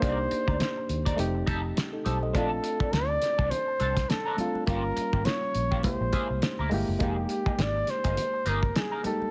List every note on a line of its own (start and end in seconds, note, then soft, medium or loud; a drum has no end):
0.00 0.26 C2 medium
0.00 0.83 A#3 medium
0.00 0.84 D4 medium
0.00 0.17 D#4 medium
0.00 0.84 D#4 medium
0.00 0.85 G4 medium
0.00 0.17 A#4 medium
0.00 1.49 C5 medium
0.00 0.17 D5 medium
0.00 kick medium
0.00 closed hi-hat medium
0.00 muted conga soft
0.31 muted clean electric guitar stroke soft
0.31 closed hi-hat medium
0.47 0.58 D2 medium
0.47 0.57 D#4 soft
0.47 0.56 A#4 soft
0.47 0.56 D5 soft
0.47 kick medium
0.60 snare medium
0.60 closed hi-hat medium
0.60 high conga medium
0.76 muted clean electric guitar stroke soft
0.89 1.13 D#2 medium
0.89 closed hi-hat medium
1.05 1.17 D#4 soft
1.05 1.17 A#4 medium
1.05 1.17 D5 medium
1.05 kick medium
1.05 closed hi-hat medium
1.16 1.42 F1 loud
1.16 1.89 A3 medium
1.16 1.90 C4 medium
1.16 1.77 D#4 medium
1.16 1.77 G4 loud
1.16 closed hi-hat medium
1.16 muted conga soft
1.35 muted clean electric guitar stroke soft
1.46 1.71 F1 medium
1.46 1.62 D#4 medium
1.46 1.62 G4 medium
1.46 1.62 A4 medium
1.46 kick medium
1.46 closed hi-hat medium
1.46 muted conga soft
1.46 low conga medium
1.63 muted clean electric guitar stroke soft
1.76 muted clean electric guitar stroke soft
1.76 snare loud
1.76 closed hi-hat medium
1.76 high conga medium
1.93 2.05 D#4 soft
1.93 2.05 A4 medium
2.05 2.35 B1 medium
2.05 2.17 D#4 soft
2.05 2.17 G4 soft
2.05 2.22 G4 medium
2.05 2.18 A4 medium
2.05 2.22 C5 medium
2.05 closed hi-hat medium
2.05 high conga medium
2.23 2.51 A4 medium
2.23 2.50 D#5 medium
2.23 high conga soft
2.33 2.58 A#1 medium
2.33 3.16 A3 medium
2.33 2.49 C4 medium
2.33 3.16 C4 medium
2.33 2.49 D4 medium
2.33 3.17 D4 medium
2.33 3.18 F4 medium
2.33 2.50 A4 medium
2.33 2.94 A4 medium
2.33 kick medium
2.33 closed hi-hat medium
2.33 muted conga soft
2.63 muted clean electric guitar stroke soft
2.63 closed hi-hat medium
2.79 2.89 C4 soft
2.79 2.89 D4 soft
2.79 2.88 A4 soft
2.79 kick medium
2.93 3.16 D2 medium
2.93 3.52 D5 loud
2.93 snare medium
2.93 closed hi-hat medium
2.93 high conga medium
3.09 muted clean electric guitar stroke soft
3.22 snare soft
3.22 closed hi-hat medium
3.38 3.49 C2 medium
3.38 3.50 C4 medium
3.38 3.50 D4 medium
3.38 3.49 A4 medium
3.38 kick medium
3.50 4.11 C5 loud
3.50 closed hi-hat medium
3.50 muted conga soft
3.50 low conga medium
3.68 muted clean electric guitar stroke soft
3.80 4.04 C2 medium
3.80 3.95 C4 medium
3.80 3.95 D4 medium
3.80 3.96 A4 medium
3.80 closed hi-hat medium
3.80 muted conga soft
3.97 muted clean electric guitar stroke soft
3.97 kick medium
3.97 snare soft
3.97 closed hi-hat medium
4.09 4.66 A4 medium
4.09 muted clean electric guitar stroke soft
4.09 snare loud
4.09 closed hi-hat medium
4.09 high conga medium
4.25 4.37 C4 medium
4.25 4.37 D4 medium
4.25 4.37 A#4 medium
4.37 4.59 A3 medium
4.37 4.60 C4 medium
4.37 4.60 D4 medium
4.37 4.61 F4 medium
4.37 muted clean electric guitar stroke soft
4.37 closed hi-hat medium
4.37 high conga medium
4.55 muted clean electric guitar stroke soft
4.55 high conga soft
4.66 4.91 G1 medium
4.66 5.49 G3 medium
4.66 4.82 A#3 medium
4.66 5.49 A#3 medium
4.66 5.50 C#4 medium
4.66 4.82 F4 medium
4.66 5.51 F4 medium
4.66 4.83 G4 medium
4.66 5.26 A#4 medium
4.66 kick loud
4.66 closed hi-hat medium
4.66 muted conga soft
4.96 muted clean electric guitar stroke soft
4.96 muted fingered electric bass stroke soft
4.96 closed hi-hat medium
5.13 5.23 G#1 medium
5.13 5.22 A#3 soft
5.13 5.22 F4 soft
5.13 5.22 G4 soft
5.13 kick medium
5.25 5.83 C#5 medium
5.25 muted clean electric guitar stroke soft
5.25 snare medium
5.25 closed hi-hat medium
5.25 high conga medium
5.42 muted clean electric guitar stroke soft
5.55 5.84 A#1 medium
5.55 closed hi-hat medium
5.71 5.83 A#3 medium
5.71 5.83 F4 medium
5.71 5.82 G4 medium
5.71 kick medium
5.83 5.98 C2 loud
5.83 6.55 G#3 medium
5.83 6.56 A#3 medium
5.83 6.56 E4 medium
5.83 6.67 C5 medium
5.83 kick medium
5.83 closed hi-hat medium
5.83 muted conga soft
5.87 6.57 G4 medium
6.01 6.11 A#1 medium
6.01 muted clean electric guitar stroke soft
6.13 6.28 A#3 medium
6.13 6.28 E4 medium
6.13 6.28 G#4 medium
6.13 kick medium
6.13 closed hi-hat medium
6.13 muted conga soft
6.13 low conga medium
6.30 6.40 C2 medium
6.42 muted clean electric guitar stroke soft
6.42 snare loud
6.42 closed hi-hat medium
6.42 high conga medium
6.59 6.69 D2 medium
6.59 6.70 A#3 medium
6.59 6.70 E4 medium
6.59 6.70 A#4 medium
6.70 6.85 G1 medium
6.70 6.92 G#3 medium
6.70 6.93 A#3 medium
6.70 6.93 E4 medium
6.70 muted clean electric guitar stroke soft
6.70 open hi-hat medium
6.70 high conga medium
6.74 6.94 G4 medium
6.88 6.98 F#1 medium
6.88 muted clean electric guitar stroke soft
6.88 high conga soft
6.99 7.24 F1 medium
6.99 7.82 G#3 medium
6.99 7.15 A#3 medium
6.99 7.82 A#3 medium
6.99 7.16 D#4 medium
6.99 7.83 D#4 medium
6.99 7.83 G4 medium
6.99 7.16 G#4 medium
6.99 kick medium
6.99 closed hi-hat medium
6.99 muted conga soft
7.04 7.64 G4 medium
7.29 muted clean electric guitar stroke soft
7.29 closed hi-hat medium
7.46 7.55 A#3 soft
7.46 7.55 D#4 soft
7.46 7.55 G#4 soft
7.46 kick medium
7.58 7.82 G#1 medium
7.58 7.92 D5 loud
7.58 muted clean electric guitar stroke soft
7.58 snare medium
7.58 closed hi-hat medium
7.58 high conga medium
7.76 muted clean electric guitar stroke soft
7.87 8.50 C5 medium
7.87 snare soft
7.87 closed hi-hat medium
8.04 8.15 G1 medium
8.04 8.16 A#3 medium
8.04 8.15 D#4 medium
8.04 8.15 G#4 medium
8.04 kick medium
8.04 closed hi-hat medium
8.17 closed hi-hat medium
8.17 muted conga soft
8.17 low conga medium
8.34 muted clean electric guitar stroke soft
8.46 8.70 G1 medium
8.46 8.60 A#3 medium
8.46 8.61 D#4 medium
8.46 8.61 G#4 medium
8.46 8.78 A#4 medium
8.46 closed hi-hat medium
8.46 muted conga soft
8.63 muted clean electric guitar stroke soft
8.63 kick medium
8.74 9.05 G#4 medium
8.74 muted clean electric guitar stroke soft
8.74 snare loud
8.74 closed hi-hat medium
8.74 high conga medium
8.92 9.02 A#3 soft
8.92 9.03 D#4 medium
8.92 9.02 A#4 medium
9.03 9.25 G#3 medium
9.03 9.26 A#3 medium
9.03 9.26 D#4 medium
9.03 9.27 G4 medium
9.03 9.31 A4 medium
9.03 muted clean electric guitar stroke soft
9.03 closed hi-hat medium
9.03 high conga medium
9.20 muted clean electric guitar stroke soft
9.20 high conga soft